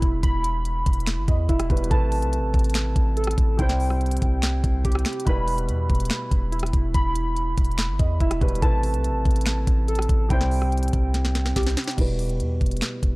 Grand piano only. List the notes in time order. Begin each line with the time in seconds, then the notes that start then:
Already playing: B2 G3 E4 B4
1.28 D#5
1.49 E5
1.69 B2 G3 E4 B4
1.89 C3 A3 E4 B4
3.57 C3 G3 E4 C5
5.25 B2 G3 E4 B4
7.99 D#5
8.20 E5
8.41 B2 G3 E4 B4
8.61 C3 A3 E4 B4
10.29 C3 G3 E4 C5
11.97 B2 G3 E4 B4